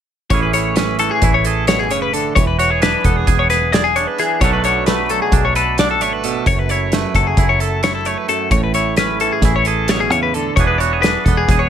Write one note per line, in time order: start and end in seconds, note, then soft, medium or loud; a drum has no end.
0.30 1.08 A1 medium
0.30 2.34 A2 medium
0.30 0.99 E3 medium
0.30 0.76 C#4 medium
0.30 0.55 E4 medium
0.30 0.42 C#5 medium
0.30 kick loud
0.30 closed hi-hat medium
0.34 1.45 G#4 medium
0.42 0.53 B4 medium
0.53 1.23 E4 medium
0.53 0.76 C#5 medium
0.53 closed hi-hat medium
0.76 2.34 C#4 medium
0.76 0.99 B4 medium
0.76 snare loud
0.76 closed hi-hat medium
0.99 2.35 E3 medium
0.99 1.10 A4 medium
0.99 closed hi-hat medium
1.11 1.33 G#4 medium
1.22 1.91 A1 medium
1.22 2.34 E4 medium
1.22 kick loud
1.22 closed hi-hat medium
1.34 1.45 C#5 medium
1.45 2.34 G#4 medium
1.45 1.68 A4 medium
1.45 closed hi-hat medium
1.67 1.90 B2 medium
1.67 1.79 C#5 medium
1.67 snare loud
1.67 closed hi-hat medium
1.79 1.90 G#4 medium
1.91 2.30 F#1 medium
1.91 2.13 C#3 medium
1.91 2.02 C#5 medium
1.91 closed hi-hat medium
2.02 2.13 B4 medium
2.13 2.36 D3 medium
2.13 2.35 A4 medium
2.13 closed hi-hat medium
2.35 2.95 E1 medium
2.35 4.18 E3 medium
2.35 2.47 C#5 medium
2.35 kick loud
2.35 closed hi-hat medium
2.47 2.59 B4 medium
2.59 2.70 F#4 medium
2.59 2.82 C#5 medium
2.59 closed hi-hat medium
2.70 3.26 G#4 medium
2.82 3.95 D4 medium
2.82 3.05 B4 medium
2.82 snare loud
2.82 closed hi-hat medium
3.04 3.24 E1 medium
3.04 4.39 B3 medium
3.04 3.17 A4 medium
3.04 kick medium
3.04 closed hi-hat medium
3.17 3.39 G#4 medium
3.27 4.05 E1 loud
3.27 3.49 G#4 medium
3.27 kick loud
3.27 closed hi-hat medium
3.39 3.50 C#5 medium
3.50 3.72 G#4 medium
3.50 3.72 B4 medium
3.50 snare soft
3.50 closed hi-hat medium
3.72 4.38 G#4 medium
3.72 3.84 D5 medium
3.72 snare loud
3.72 closed hi-hat medium
3.84 3.95 G#4 medium
3.96 4.39 D4 medium
3.96 4.07 C#5 medium
3.96 closed hi-hat medium
4.07 4.19 B4 medium
4.19 4.41 E3 medium
4.19 4.42 G#4 medium
4.19 closed hi-hat medium
4.41 5.19 B1 medium
4.41 6.23 B2 medium
4.41 5.10 F#3 medium
4.41 4.88 A3 medium
4.41 4.64 D4 medium
4.41 5.56 A4 medium
4.41 4.53 C#5 medium
4.41 kick loud
4.41 closed hi-hat medium
4.53 4.64 B4 medium
4.64 5.32 D4 medium
4.64 4.86 C#5 medium
4.64 closed hi-hat medium
4.86 6.01 A3 medium
4.86 5.09 B4 medium
4.86 snare medium
4.86 closed hi-hat medium
5.09 6.44 F#3 medium
5.09 5.21 A4 medium
5.09 closed hi-hat medium
5.22 5.44 G#4 medium
5.32 6.01 B1 medium
5.32 5.78 D4 medium
5.32 kick loud
5.32 closed hi-hat medium
5.45 5.56 C#5 medium
5.55 7.61 A4 medium
5.55 5.78 B4 medium
5.55 closed hi-hat medium
5.78 6.44 D4 medium
5.78 5.90 D5 medium
5.78 snare loud
5.78 closed hi-hat medium
5.91 6.02 A4 medium
6.01 6.39 G#1 medium
6.01 6.94 A3 medium
6.01 6.13 C#5 medium
6.01 closed hi-hat medium
6.13 6.25 B4 medium
6.24 6.46 B2 medium
6.24 6.47 A4 medium
6.24 closed hi-hat medium
6.46 7.05 F#1 medium
6.46 8.27 F#2 medium
6.46 6.59 C#5 medium
6.46 kick medium
6.46 closed hi-hat medium
6.59 6.70 B4 medium
6.69 7.38 E4 medium
6.69 6.93 C#5 medium
6.69 closed hi-hat medium
6.92 8.05 A3 medium
6.92 7.15 B4 medium
6.92 snare loud
6.92 closed hi-hat medium
7.14 7.34 F#1 medium
7.14 8.49 F#3 medium
7.14 7.26 A4 medium
7.14 kick medium
7.14 closed hi-hat medium
7.27 7.49 G#4 medium
7.37 8.15 F#1 loud
7.37 7.83 E4 medium
7.37 kick loud
7.37 closed hi-hat medium
7.49 7.60 C#5 medium
7.60 7.83 A4 medium
7.60 8.49 A4 medium
7.60 closed hi-hat medium
7.83 8.75 E4 medium
7.83 7.94 C#5 medium
7.83 snare loud
7.83 closed hi-hat medium
7.95 8.06 A4 medium
8.05 8.97 A3 medium
8.05 8.18 C#5 medium
8.05 closed hi-hat medium
8.18 8.29 B4 medium
8.28 8.51 F#2 medium
8.28 8.51 A4 medium
8.28 closed hi-hat medium
8.51 9.29 A1 medium
8.51 10.54 A2 medium
8.51 8.63 C#5 medium
8.51 kick loud
8.51 closed hi-hat medium
8.64 8.74 B4 medium
8.74 9.45 E4 medium
8.74 8.97 C#5 medium
8.74 closed hi-hat medium
8.96 10.55 C#4 medium
8.96 9.20 B4 medium
8.96 snare loud
8.96 closed hi-hat medium
9.20 10.57 E3 medium
9.20 9.32 A4 medium
9.20 closed hi-hat medium
9.32 9.54 G#4 medium
9.42 10.10 A1 medium
9.42 10.55 E4 medium
9.42 kick loud
9.42 snare soft
9.42 closed hi-hat medium
9.56 9.66 C#5 medium
9.65 10.55 G#4 medium
9.65 9.89 A4 medium
9.65 closed hi-hat medium
9.88 10.12 B2 medium
9.88 10.00 C#5 medium
9.88 snare loud
9.88 closed hi-hat medium
10.00 10.11 G#4 medium
10.10 10.49 E2 medium
10.10 10.35 C#3 medium
10.10 10.22 C#5 medium
10.10 closed hi-hat medium
10.23 10.34 B4 medium
10.34 10.57 D3 medium
10.34 10.56 A4 medium
10.34 closed hi-hat medium
10.56 11.15 E1 medium
10.56 11.69 E3 medium
10.56 11.28 B3 medium
10.56 11.05 D4 medium
10.56 10.67 C#5 medium
10.56 kick loud
10.56 closed hi-hat medium
10.61 10.80 G#4 medium
10.67 10.78 B4 medium
10.78 10.93 F#4 medium
10.78 11.02 C#5 medium
10.78 closed hi-hat medium
10.93 11.49 G#4 medium
11.02 11.69 D4 medium
11.02 11.25 B4 medium
11.02 snare medium
11.02 closed hi-hat medium
11.25 11.45 E1 medium
11.25 11.69 B3 medium
11.25 11.36 A4 medium
11.25 kick medium
11.25 closed hi-hat medium
11.37 11.60 G#4 medium
11.48 11.69 E1 medium
11.48 11.69 G#4 medium
11.48 kick loud
11.48 snare soft
11.48 closed hi-hat medium
11.59 11.69 C#5 medium